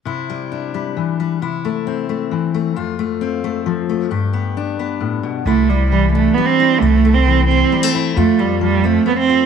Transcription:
<<
  \new Staff \with { instrumentName = "Cello" } { \time 3/4 \key c \major \tempo 4 = 133 r2. | r2. | r2. | r2. |
a8 g8 g8 a8 b16 c'8. | a8. c'8. c'4 r8 | a8 g8 g8 a8 b16 c'8. | }
  \new Staff \with { instrumentName = "Steel-string acoustic guitar" } { \time 3/4 \key c \major << { e'8 g8 d'8 g4 g8 | e'8 a8 c'8 a4 a8 | f'8 a8 c'8 a4 a8 | g'8 b8 d'8 b4. |
e'8 g4 d'8 g8 e'8 | e'8 a4 c'8 g16 a16 e'8 | f'8 a4 c'8 a8 f'8 | } \\ { c2 e4 | c2 e4 | f,2 f4 | g,2 a,8 b,8 |
c4 e2 | c4 e2 | f,4 f2 | } >> }
  \new Staff \with { instrumentName = "Upright bass" } { \clef bass \time 3/4 \key c \major r2. | r2. | r2. | r2. |
c,2 r4 | c,2 r4 | f,2 r4 | }
>>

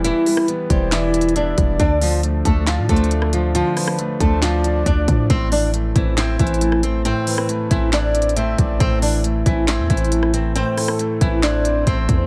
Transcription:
<<
  \new Staff \with { instrumentName = "Soft synth lead" } { \time 4/4 \key a \minor \tempo 4 = 137 r8 b'4 c''8 d''4 e''8 d''8 | r2 r8 c''8 r4 | r8 b'4 c''8 d''2 | r2 r8 c''8 r4 |
r8 b'4 c''8 d''4 e''8 d''8 | r2 r8 c''8 r4 | r8 a'4 b'8 c''2 | }
  \new Staff \with { instrumentName = "Nylon-string guitar" } { \time 4/4 \key a \minor <e e'>4 r8 <g g'>8 <e e'>4 <d' d''>4 | <d' d''>8 <f f'>8 r8 <a a'>8 <f f'>8 <a a'>4 <f f'>8 | <f f'>4 r8 <a a'>8 <f f'>4 <d' d''>4 | <c' c''>8 <d' d''>8 r8 <e e'>8 <c' c''>8 <e e'>4 <c' c''>8 |
<c' c''>4 r8 <e e'>8 <d' d''>4 <c' c''>4 | <c' c''>8 <d' d''>8 r8 <e e'>8 <c' c''>8 <e e'>4 <c' c''>8 | <c' c''>4 r8 <e e'>8 <d' d''>4 <c' c''>4 | }
  \new Staff \with { instrumentName = "Grand piano" } { \time 4/4 \key a \minor <e g b e' e''>8 g8 b8 e'8 e''8 e'8 b8 g8 | d8 f8 a8 d'8 f'8 d'8 a8 f8 | d8 f8 a8 d'8 f'8 d'8 a8 f8 | a,8 e8 a8 c'8 e'8 c'8 a8 e8 |
a,8 e8 a8 c'8 e'8 c'8 a8 e8 | a,8 e8 a8 c'8 e'8 c'8 a8 e8 | a,8 e8 a8 c'8 e'8 c'8 a8 e8 | }
  \new Staff \with { instrumentName = "808-style bass" } { \clef bass \time 4/4 \key a \minor e,,16 r4 r16 e,,2 e,,8 | d,4. d,8. a,16 d,4.~ | d,16 r4 r16 d,4. d,8 a,8 | a,,4. a,,4 a,,4.~ |
a,,16 r4 r16 a,,2 a,,8 | a,,4. a,,8. e,16 a,,4.~ | a,,16 r4 r16 a,,4. a,,8 e,8 | }
  \new DrumStaff \with { instrumentName = "Drums" } \drummode { \time 4/4 hh8 hho16 ss16 hh8 <hh bd>8 \tuplet 3/2 { <hc hh sn>16 r16 r16 hh16 hh16 hh16 } hh8 <hh bd>8 | <hh bd>8 hho8 hh8 <hh bd>8 \tuplet 3/2 { <hc hh sn>16 r16 r16 <hh bd>16 hh16 hh16 } hh16 ss16 hh8 | hh8 <hho ss>16 ss16 hh8 <hh bd>8 <hc hh sn>8 hh8 <hh bd>8 <hh bd>8 | <hh bd>8 hho8 hh8 <hh bd>8 \tuplet 3/2 { <hc hh sn>16 r16 r16 <hh bd>16 hh16 hh16 } hh16 ss16 hh8 |
hh8 hho16 ss16 hh8 <hh bd>8 \tuplet 3/2 { <hc hh sn>16 r16 r16 hh16 hh16 hh16 } hh8 <hh bd>8 | <hh bd>8 hho8 hh8 <hh bd>8 \tuplet 3/2 { <hc hh sn>16 r16 r16 <hh bd>16 hh16 hh16 } hh16 ss16 hh8 | hh8 <hho ss>16 ss16 hh8 <hh bd>8 <hc hh sn>8 hh8 <hh bd>8 <hh bd>8 | }
>>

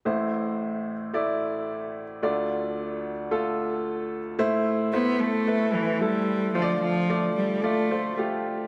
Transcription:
<<
  \new Staff \with { instrumentName = "Upright piano" } { \time 4/4 \key a \minor \tempo 4 = 111 <a e' c''>4. r8 <a e' d''>4. r8 | <a f' d''>4. r8 <a f' a'>4. r8 | <a e' c''>4 <a e' c''>4 <a e' b'>8 <a e' b'>8 <a e' a'>4 | <a f' c'' d''>4 <a f' d''>4 <a f' d''>8 <a f' c''>8 <a f' g'>4 | }
  \new Staff \with { instrumentName = "Upright piano" } { \clef bass \time 4/4 \key a \minor <a,, a,>1 | <d, d>1 | a,4. r2 r8 | d4. r2 r8 | }
  \new Staff \with { instrumentName = "Cello" } { \clef bass \time 4/4 \key a \minor r1 | r1 | r4 b8 a4 e8 g4 | f8 f4 g8 a4 r4 | }
>>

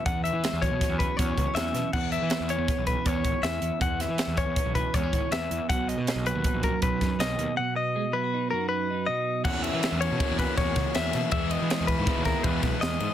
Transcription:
<<
  \new Staff \with { instrumentName = "Clean electric guitar" } { \time 5/4 \key fis \mixolydian \tempo 4 = 160 fis''8 e''4 cis''4 b'8 cis''4 e''4 | fis''8 e''4 cis''4 b'8 cis''4 e''4 | fis''8 e''4 cis''4 b'8 cis''4 e''4 | fis''8 dis''4 b'4 ais'8 b'4 dis''4 |
fis''8 dis''4 b'4 ais'8 b'4 dis''4 | fis''8 e''4 cis''4 b'8 cis''4 e''4 | e''8 dis''4 b'4 ais'8 b'4 dis''4 | }
  \new Staff \with { instrumentName = "Clean electric guitar" } { \time 5/4 \key fis \mixolydian << { e'4 gis16 b16 e'8 cis'8 e'8 b8 b16 cis'4~ cis'16 | r4 b8 e'8 b16 cis'16 e'8 b8 cis'4. | r4 b8 e'8 cis'8 e'8 gis16 b16 cis'4. | r4 ais8 fis'8 dis'8 fis'4 dis'4. |
r4 gis16 r16 e'16 fis'16 dis'8 fis'4 dis'4. | r1 r4 | r1 r4 | } \\ { e,4. fis4 e,4. e,4 | e,4. e4 e,4. e,4 | e,4. e4 e,4. e,4 | b,4. fis4 fis,4. b,4 |
b,4. fis4 fis,4. b,4 | r1 r4 | r1 r4 | } >> }
  \new Staff \with { instrumentName = "Overdriven electric guitar" } { \time 5/4 \key fis \mixolydian r1 r4 | r1 r4 | r1 r4 | r1 r4 |
r1 r4 | <e ais cis' fis'>2 <e ais cis' fis'>2. | <e gis b e'>2 <e gis b e'>2. | }
  \new Staff \with { instrumentName = "Picked electric bass" } { \clef bass \time 5/4 \key fis \mixolydian e,8. e16 r16 e,8 b,16 r16 e,8 r16 e,8 cis,16 r16 e,8 b,16 r16 | e,8. e16 r16 e,8 e,16 r16 b,,8 r16 e,8 gis,,16 r16 e,8 e,16 r16 | e,8. e16 r16 e,8 e,16 r16 b,,8 r16 e,8 gis,,16 r16 e,8 e,16 r16 | b,,8. b,16 r16 b,,8 dis,16 r16 ais,,8 r16 b,,8 fis,16 r16 b,,8 dis,16 r16 |
r1 r4 | e,8. e16 r16 e,8 b,16 r16 e,8 r16 e,8 cis,16 r16 e,8 b,16 r16 | e,8. e16 r16 e,8 gis,16 r16 dis,8 r16 e,8 b,,16 r16 e,8 gis,16 r16 | }
  \new DrumStaff \with { instrumentName = "Drums" } \drummode { \time 5/4 <hh bd>8 hh8 <hh sn>8 <hh bd>8 <hh bd sn>8 <hh bd>8 <hh bd>8 <hh bd>8 <hh sn>8 <hh sn>8 | <cymc bd>8 hh8 <hh sn>8 hh8 <hh bd sn>8 <hh bd>8 <hh bd>8 <hh bd>8 <hh sn>8 hh8 | <hh bd>8 <hh sn>8 <hh sn>8 <hh bd>8 <hh bd>8 <hh bd>8 <hh bd>8 <hh bd>8 <hh sn>8 hh8 | <hh bd>8 hh8 <hh sn>8 hh8 <hh bd>8 <hh bd>8 <hh bd>8 <hh bd sn>8 <hh sn>8 hh8 |
r4 r4 r4 r4 r4 | <cymc bd>8 cymr8 <cymr sn>8 cymr8 <bd cymr>8 <bd cymr sn>8 <bd cymr sn>8 <bd cymr sn>8 <cymr sn>8 <cymr sn>8 | <bd cymr>8 cymr8 <cymr sn>8 <bd cymr>8 <bd cymr sn>8 <bd cymr sn>8 <bd cymr>8 <bd cymr sn>8 <cymr sn>8 cymr8 | }
>>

